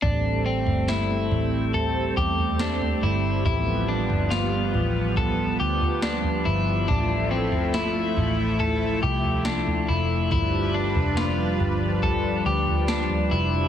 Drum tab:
SD |----o-------o---|----o-------o---|----o-------o---|----o-------o---|
FT |o--o--o-o--o-o--|o--o--o-o--o-o--|o--o--o-o--o-o--|o--o--o-o--o-o--|
BD |o---------o-----|o-------o-------|o---------o-----|o-------o-------|